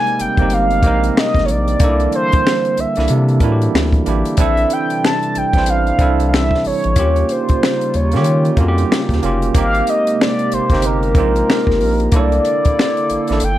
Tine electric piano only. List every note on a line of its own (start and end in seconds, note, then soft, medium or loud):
0.00 0.12 A#3 loud
0.00 0.16 C4 medium
0.00 0.14 D#4 medium
0.00 0.14 G4 loud
0.00 0.87 A#4 medium
0.39 0.75 A#3 medium
0.39 0.76 C4 medium
0.39 0.77 D#4 medium
0.39 0.77 G4 medium
0.84 1.62 A#3 medium
0.84 1.62 C4 medium
0.84 1.63 D#4 medium
0.84 1.64 A#4 medium
1.80 2.70 A#3 loud
1.80 2.71 D4 medium
1.80 1.90 D#4 medium
1.80 2.72 A4 loud
1.89 2.75 E4 medium
2.97 3.33 A#3 medium
2.97 3.34 D4 medium
2.97 3.34 E4 medium
2.97 3.35 A4 medium
3.42 3.96 D4 medium
3.42 3.97 E4 medium
3.42 3.51 F#4 medium
3.42 3.95 A#4 medium
3.52 4.00 G4 medium
4.06 4.33 A#3 medium
4.06 4.33 D4 medium
4.06 4.34 E4 medium
4.06 4.35 G4 medium
4.38 5.28 C4 medium
4.38 5.29 D4 medium
4.38 5.29 E4 medium
4.38 5.30 A4 loud
5.55 5.91 C4 medium
5.55 5.92 D4 medium
5.55 5.93 E4 medium
5.55 5.93 C5 loud
5.99 6.77 C4 medium
5.99 6.78 D4 medium
5.99 6.79 E4 medium
5.99 6.79 A4 medium
6.96 7.86 A#3 medium
6.96 7.87 C#4 medium
6.96 7.87 F4 medium
6.96 7.88 G4 loud
8.13 8.50 A#3 medium
8.13 8.50 C#4 medium
8.13 8.51 F4 medium
8.13 8.51 G4 medium
8.58 9.12 A#3 medium
8.58 9.12 C#4 medium
8.58 9.13 F4 medium
8.58 8.68 F#4 medium
8.68 9.17 G4 loud
9.23 9.49 A#3 medium
9.23 9.50 C#4 medium
9.23 9.50 F4 medium
9.23 9.51 G4 medium
9.55 10.45 A#3 loud
9.55 10.45 C4 medium
9.55 10.46 D#4 medium
9.55 10.47 G4 loud
10.71 11.08 A#3 medium
10.71 11.08 C4 medium
10.71 11.09 D#4 medium
10.71 11.10 G4 medium
11.16 11.94 A#3 medium
11.16 11.95 C4 medium
11.16 11.95 D#4 medium
11.16 11.96 F4 medium
12.13 13.03 A#3 medium
12.13 13.03 D4 medium
12.13 13.04 E4 medium
12.13 13.05 A4 loud
13.29 13.41 A#3 medium
13.29 13.42 D4 medium
13.29 13.43 E4 medium
13.29 13.43 A4 medium